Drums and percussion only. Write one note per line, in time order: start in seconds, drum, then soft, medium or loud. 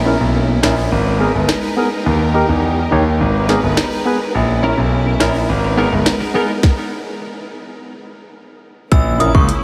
0.63 cross-stick medium
0.63 snare loud
1.48 cross-stick medium
1.48 snare loud
3.49 snare medium
3.77 cross-stick medium
3.77 snare loud
5.20 cross-stick medium
5.20 snare loud
6.06 cross-stick medium
6.06 snare loud
6.63 kick loud
6.63 snare medium
8.92 kick loud
8.92 closed hi-hat medium
9.20 closed hi-hat medium
9.35 kick loud
9.49 closed hi-hat medium